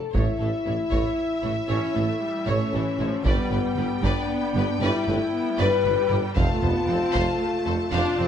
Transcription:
Already playing: french horn section A4
0.13 tuba A1, double bass section A1, cello section A2, french horn section E4, violin section C#5 E5, taiko
0.39 double bass section A1, tuba A1, cello section A2, violin section A4 C#5
0.65 tuba A1, double bass section A1, cello section A2, violin section E4 C#5
0.90 double bass section A1, tuba A1, cello section A2, violin section C#5, taiko
1.42 double bass section A1, tuba A1, cello section A2, violin section E4 C#5
1.68 tuba A1, double bass section A1, cello section A2, viola section C#4, french horn section E4, violin section C#5
1.95 tuba A1, double bass section A1, cello section A2, viola section A3, violin section A4 C#5
2.22 viola section G3
2.46 tuba A1, double bass section A1, cello section A2, viola section A3, french horn section C#4, violin section C#5
2.73 tuba A1, double bass section A1, cello section A2, viola section E3, violin section A4 C#5
2.98 tuba A1, double bass section A1, cello section A2, viola section F3, violin section E4 C#5
3.23 tuba G1, double bass section G1, cello section G2, viola section G3, french horn section B3, violin section B4 D5 G5, taiko
3.49 tuba G1, double bass section G1, cello section G2, violin section B4
3.76 tuba G1, double bass section G1, cello section G2, violin section G4 B4
4.03 tuba G1, double bass section G1, cello section G2, viola section B3, french horn section D4, violin section B4 D5, taiko
4.55 double bass section G1, tuba G1, cello section G2, violin section G4 B4
4.81 tuba G1, double bass section G1, cello section G2, viola section G3, french horn section E4, violin section B4 D5
5.06 tuba G1, double bass section G1, cello section G2, viola section A3, violin section B4
5.32 viola section B3
5.57 tuba G1, double bass section G1, cello section G2, viola section G3, violin section B4 D5, french horn section B4
5.83 tuba G1, double bass section G1, cello section G2, violin section B4
6.08 double bass section G1, tuba G1, cello section G2, violin section G4 B4
6.35 tuba F1, double bass section F1, cello section F2, viola section A3, french horn section F4, violin section C5 F5 A5, taiko
6.61 double bass section F1, tuba F1, cello section F2, viola section B3, violin section C5, taiko low
6.87 double bass section F1, tuba F1, cello section F2, viola section C4, violin section A4 C5
7.12 double bass section F1, tuba F1, cello section F2, viola section A3, violin section C5 F5, taiko
7.66 double bass section F1, tuba F1, cello section F2, violin section A4 C5
7.91 double bass section F1, tuba F1, cello section F2, viola section D4, french horn section F4, violin section C5 F5
8.19 double bass section F1, tuba F1, cello section F2, viola section C4, violin section C5

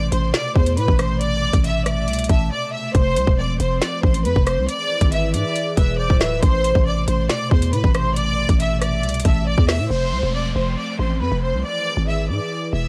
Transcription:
Already playing: 808-style bass A1, analog synth pad B2 C3 A3, violin section D5 D6
0.12 808-style bass A1, violin section C5 C6, closed hi-hat
0.34 violin section D5 D6, snare, closed hi-hat
0.56 808-style bass E2, violin section C5 C6, kick
0.66 closed hi-hat
0.77 808-style bass A2, violin section B4 B5, closed hi-hat
0.88 808-style bass A1, kick
0.99 violin section C5 C6, cross-stick, closed hi-hat
1.20 violin section D5 D6, closed hi-hat
1.53 808-style bass A1, kick, closed hi-hat
1.64 violin section E5 E6, closed hi-hat
1.86 violin section D5 D6, soft synth lead E5, cross-stick, closed hi-hat
2.08 808-style bass C2, closed hi-hat
2.13 closed hi-hat
2.19 closed hi-hat
2.24 closed hi-hat
2.29 808-style bass A1, violin section E5 E6, soft synth lead A5, kick, closed hi-hat
2.52 violin section D5 D6
2.73 violin section E5 E6
2.95 808-style bass F1, analog synth pad F3 C4, violin section C5 C6, kick, closed hi-hat
3.16 808-style bass C2, soft synth lead C5, closed hi-hat
3.27 808-style bass E1, kick
3.39 violin section D5 D6
3.59 808-style bass F1, violin section C5 C6, closed hi-hat
3.82 violin section D5 D6, snare, closed hi-hat
4.03 808-style bass A1, violin section C5 C6, kick
4.14 closed hi-hat
4.25 808-style bass F2, violin section B4 B5, closed hi-hat
4.36 808-style bass F1, kick
4.47 violin section C5 C6, cross-stick, closed hi-hat
4.58 808-style bass C2
4.69 analog synth pad E3 E4 G#4 B4, violin section D5 D6, closed hi-hat
5.01 808-style bass G#1, kick, closed hi-hat
5.12 violin section E5 E6, closed hi-hat
5.34 808-style bass G#2, violin section D5 D6, soft synth lead E5, closed hi-hat
5.56 closed hi-hat
5.77 808-style bass E1, soft synth lead B4, violin section E5 E6, kick, closed hi-hat
5.98 soft synth lead C5, violin section D5 D6
6.10 808-style bass D1, kick
6.21 soft synth lead B4, violin section E5 E6, cross-stick, snare, closed hi-hat
6.42 808-style bass A1, analog synth pad B2 C3 A3, violin section C5 C6, kick, closed hi-hat
6.64 soft synth lead C5, closed hi-hat
6.75 808-style bass A1, kick
6.86 violin section D5 D6
7.08 808-style bass A1, violin section C5 C6, closed hi-hat
7.29 violin section D5 D6, snare, closed hi-hat
7.51 808-style bass E2, violin section C5 C6, kick
7.62 closed hi-hat
7.73 808-style bass A2, violin section B4 B5, closed hi-hat
7.84 808-style bass A1, kick
7.95 violin section C5 C6, cross-stick, closed hi-hat
8.16 violin section D5 D6, closed hi-hat
8.49 808-style bass A1, kick, closed hi-hat
8.60 violin section E5 E6, closed hi-hat
8.82 violin section D5 D6, soft synth lead E5, cross-stick, closed hi-hat
9.03 808-style bass C2, closed hi-hat
9.09 closed hi-hat
9.14 closed hi-hat
9.20 closed hi-hat
9.25 808-style bass A1, violin section E5 E6, soft synth lead A5, kick, closed hi-hat
9.47 violin section D5 D6
9.58 808-style bass E2, kick
9.68 violin section E5 E6, cross-stick, snare, open hi-hat
9.79 808-style bass A2
9.90 808-style bass F1, analog synth pad F3 A3 C4, violin section C5 C6, downlifter
10.12 808-style bass C2
10.23 808-style bass E1
10.34 violin section D5 D6
10.55 808-style bass F1, violin section C5 C6
10.77 violin section D5 D6
10.99 808-style bass A1, violin section C5 C6
11.21 808-style bass F2, violin section B4 B5
11.32 808-style bass F1
11.43 violin section C5 C6
11.53 808-style bass C2
11.64 analog synth pad E3 E4 G#4 B4, violin section D5 D6
11.97 808-style bass G#1
12.08 violin section E5 E6
12.29 808-style bass G#2, violin section D5 D6
12.73 808-style bass E1, violin section E5 E6

